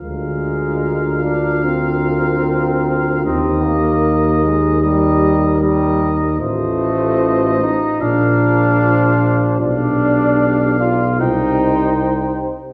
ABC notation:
X:1
M:4/4
L:1/8
Q:1/4=75
K:Eb
V:1 name="Trumpet"
f8 | e4 e2 e2 | e4 f4 | f4 g3 z |]
V:2 name="Flugelhorn"
B8 | B4 B2 B2 | c4 B2 c2 | d4 c3 z |]
V:3 name="French horn"
F8 | G4 G2 G2 | F4 F4 | G4 G3 z |]
V:4 name="Trombone"
A,3 D C4 | C B,2 A, G,2 G, z | =A,3 E D4 | D3 F E3 z |]
V:5 name="Tuba" clef=bass
D,,8 | E,,8 | =A,,,4 B,,,4 | =B,,,4 C,,3 z |]